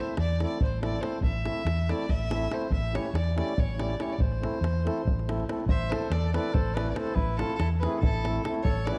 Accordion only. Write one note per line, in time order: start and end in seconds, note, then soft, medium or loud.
0.00 0.14 A3 soft
0.00 0.14 C4 soft
0.00 0.14 E4 medium
0.00 0.15 A4 medium
0.42 0.58 A3 medium
0.42 0.58 C4 medium
0.42 0.58 E4 medium
0.42 0.58 A4 medium
0.82 0.98 A3 medium
0.82 0.99 C4 medium
0.82 0.99 E4 soft
0.82 0.99 A4 medium
1.01 1.18 A3 medium
1.01 1.18 C4 medium
1.01 1.18 E4 medium
1.01 1.19 A4 medium
1.44 1.61 A3 medium
1.44 1.62 C4 medium
1.44 1.62 E4 medium
1.44 1.62 A4 medium
1.89 2.05 A3 medium
1.89 2.06 C4 medium
1.89 2.06 E4 medium
1.89 2.06 A4 medium
2.30 2.47 A3 medium
2.30 2.47 C4 medium
2.30 2.47 E4 medium
2.30 2.48 A4 medium
2.50 2.66 A3 medium
2.50 2.67 C4 medium
2.50 2.67 E4 medium
2.50 2.67 A4 medium
2.92 3.09 A3 medium
2.92 3.10 C#4 medium
2.92 3.10 E4 medium
2.92 3.10 G4 medium
3.36 3.53 A3 medium
3.36 3.53 C#4 medium
3.36 3.53 E4 medium
3.36 3.54 G4 medium
3.77 3.94 A3 medium
3.77 3.95 C#4 medium
3.77 3.95 E4 medium
3.77 3.95 G4 medium
3.99 4.15 A3 medium
3.99 4.16 C#4 soft
3.99 4.16 E4 medium
3.99 4.16 G4 medium
4.41 4.58 A3 medium
4.41 4.58 C4 medium
4.41 4.59 E4 medium
4.41 4.59 A4 medium
4.84 5.01 A3 medium
4.84 5.02 C4 medium
4.84 5.02 E4 medium
4.84 5.02 A4 medium
5.27 5.44 A3 medium
5.27 5.44 C4 medium
5.27 5.44 E4 medium
5.27 5.44 A4 medium
5.48 5.64 A3 medium
5.48 5.64 C4 medium
5.48 5.64 E4 medium
5.48 5.65 A4 medium
5.90 6.07 A3 medium
5.90 6.08 C4 medium
5.90 6.08 E4 medium
5.90 6.08 A4 medium
6.33 6.50 A3 medium
6.33 6.51 C4 medium
6.33 6.51 E4 medium
6.33 6.51 A4 medium
6.76 6.92 A3 medium
6.76 6.93 C4 medium
6.76 6.93 E4 medium
6.76 6.93 A4 medium
6.97 7.13 A3 medium
6.97 7.13 C4 medium
6.97 7.14 E4 medium
6.97 7.14 A4 medium
7.39 7.56 A3 medium
7.39 7.56 C4 soft
7.39 7.56 E4 medium
7.39 7.57 A4 medium
7.83 7.99 A3 medium
7.83 8.00 C4 medium
7.83 8.00 E4 medium
7.83 8.00 A4 medium
8.26 8.41 A3 medium
8.26 8.42 C4 medium
8.26 8.42 E4 medium
8.26 8.42 A4 medium
8.46 8.62 A3 medium
8.46 8.62 C4 medium
8.46 8.63 E4 medium
8.46 8.63 A4 medium
8.88 8.98 A3 medium
8.88 8.98 C#4 medium
8.88 8.98 E4 medium
8.88 8.98 G4 medium